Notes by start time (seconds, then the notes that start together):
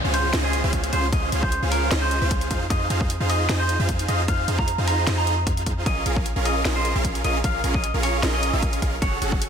Already playing: downlifter
0.05 C#2 C#4 F4 G#4 C5 F5
0.14 C5, open hi-hat
0.33 C#2 C#4 F4 G#4 C5 D#5, snare, closed hi-hat
0.44 G#4
0.53 closed hi-hat
0.64 C#2 C#4 F4 G#4 C5 F5
0.73 kick, closed hi-hat
0.84 closed hi-hat
0.93 C#2 C#4 F4 G#4 C5 F5, closed hi-hat
1.12 C#2 C#4 F4 G#4 C5 D#5 F5, kick, closed hi-hat
1.32 C#2 C#4 F4 G#4 C5 F5, closed hi-hat
1.43 C5, kick
1.52 closed hi-hat
1.62 C#2 C#4 F4 G#4 C5 F5
1.72 A#4, open hi-hat
1.91 C#2 C#4 F4 G#4 C5 D#5, snare, closed hi-hat
2.02 C5
2.11 closed hi-hat
2.22 C#2 C#4 F4 G#4 C5 F5
2.31 kick, closed hi-hat
2.41 closed hi-hat
2.51 F2 D#4 F4 G#4 C5 F5, kick, closed hi-hat
2.70 F2 D#4 F4 G#4 C5 D#5 F5, kick, closed hi-hat
2.90 F2 D#4 F4 G#4 C5 F5, closed hi-hat
3.01 kick
3.10 closed hi-hat
3.20 F2 D#4 F4 G#4 C5 F5
3.30 D#5, open hi-hat
3.49 F2 D#4 F4 G#4 C5 D#5, snare, closed hi-hat
3.60 C5
3.69 closed hi-hat
3.79 F2 D#4 F4 G#4 C5 F5
3.89 kick, closed hi-hat
3.99 closed hi-hat
4.08 F2 D#4 F4 G#4 C5 D#5 F5, closed hi-hat
4.28 F2 D#4 F4 G#4 C5 F5, kick, closed hi-hat
4.48 F2 D#4 F4 G#4 C5 F5, closed hi-hat
4.59 A#5, kick
4.68 closed hi-hat
4.78 F2 D#4 F4 G#4 C5 F5
4.87 A#5, open hi-hat
5.07 F2 D#4 F4 G#4 C5 D#5, snare, closed hi-hat
5.18 A#5
5.27 closed hi-hat
5.47 F2 D#4 F4 G#4 C5 F5, kick, closed hi-hat
5.57 closed hi-hat
5.66 kick, closed hi-hat
5.86 A#1 C#4 F4 G#4 A#4 D#5, kick, closed hi-hat
6.06 A#1 C#4 F4 G#4 A#4 F5, closed hi-hat
6.16 kick
6.26 closed hi-hat
6.36 A#1 C#4 F4 G#4 A#4 F5
6.45 D#5, open hi-hat
6.65 A#1 C#4 F4 G#4 A#4 D#5, snare, closed hi-hat
6.76 C5
6.85 closed hi-hat
6.95 A#1 C#4 F4 G#4 A#4 F5
7.05 kick, closed hi-hat
7.15 closed hi-hat
7.24 A#1 C#4 F4 G#4 A#4 D#5 F5, closed hi-hat
7.44 A#1 C#4 F4 G#4 F5, kick, closed hi-hat
7.64 A#1 C#4 F4 G#4 A#4 F5, closed hi-hat
7.74 D#5, kick
7.84 closed hi-hat
7.94 A#1 C#4 F4 G#4 A#4 F5
8.03 C#5, open hi-hat
8.23 A#1 C#4 F4 G#4 A#4 D#5, snare, closed hi-hat
8.34 D#5
8.43 closed hi-hat
8.53 A#1 C#4 F4 G#4 A#4 F5
8.62 kick, closed hi-hat
8.73 closed hi-hat
8.82 A#1 C#4 F4 G#4 A#4 F5, kick, closed hi-hat
9.02 F#1 C#4 F#4 G#4 A4 C#5 F#5, kick, closed hi-hat
9.21 F#1 C#4 F#4 G#4 A4 F#5, closed hi-hat
9.32 kick
9.42 closed hi-hat